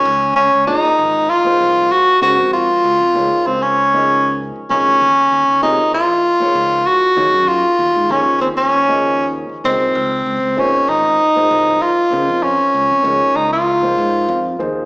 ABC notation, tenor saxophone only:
X:1
M:4/4
L:1/16
Q:1/4=97
K:Db
V:1 name="Tenor saxophone"
D2 D2 E4 F4 G2 G2 | F6 C D4- D z2 D2- | D4 E2 F6 G4 | F4 D2 C D4- D z2 C2- |
C4 D2 E6 F4 | D6 E F6- F z2 |]